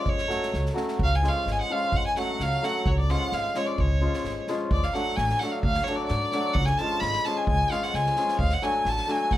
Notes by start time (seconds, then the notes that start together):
Already playing: F3 G#3 D5
0.06 F#2 C#5, kick
0.18 snare
0.28 F#3 A3 C#4 F#4, snare
0.42 snare
0.54 C#2, snare
0.66 snare
0.74 F#3 A3 C#4 F#4, snare
0.88 snare
0.99 C#2, kick
1.04 F5
1.15 G#5
1.23 F3 G#3 C#4 F4, snare
1.28 F5
1.46 G#1, snare
1.52 G#5
1.61 F#5
1.70 F3 G#3 C#4 F4 F5
1.92 F#2, kick
1.97 F#5
2.07 G#5
2.16 F#3 A3 C#4 F#4 F#5, snare
2.40 C#2 F5, snare
2.62 F#3 A3 C#4 F#4 F#5, snare
2.86 C#2 C#5, kick
3.00 D5
3.09 F3 G#3 C#4 F4 F#5, snare
3.32 G#1 F5, snare
3.54 F3 G#3 C#4 F4 C#5, snare
3.66 D5
3.78 C#2 C#5, kick
4.01 F3 G#3 C#4 F4
4.14 snare
4.24 G#1, snare
4.47 F3 G#3 C#4 F4, snare
4.71 D2 D5, kick
4.83 F5, snare
4.93 F#3 A3 D4 F#4 F#5, snare
5.16 A1 G#5, snare
5.29 snare
5.39 F#3 A3 D4 F#4 F#5, snare
5.51 F5
5.62 D2 F5, kick
5.74 snare
5.84 A3 C#5, snare
5.88 F#3 D4 F#4
5.95 D5
6.06 G#2 D5, snare
6.32 F#3 A3 D4 F#4, snare
6.53 C#2 F#5, kick
6.65 G#5, snare
6.78 F3 G#3 C#4 A5, snare
6.82 F4
7.00 G#1 B5, snare
7.12 snare
7.25 F3 G#3 C#4 F4 A5, snare
7.37 G#5
7.47 C#2 G#5, kick
7.70 F3 G#3 C#4 F4 F5, snare
7.83 F#5, snare
7.94 C#2 G#5, snare
8.06 snare
8.16 F3 G#3 C#4 F4, snare
8.28 snare
8.39 D2 F5, kick
8.50 F#5, snare
8.62 F#3 A3 D4 F#4 G#5, snare
8.85 A1 A5, snare
8.97 snare
9.07 F#3 A3 D4 F#4 G#5, snare
9.31 D2 F#5, kick